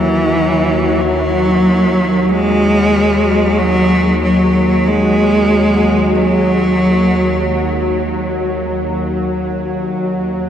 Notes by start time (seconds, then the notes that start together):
Already playing: D#2 E3 F#3
1.00 F#3
2.29 G#3
3.58 F#3
4.23 F#3
4.87 G#3
6.15 F#3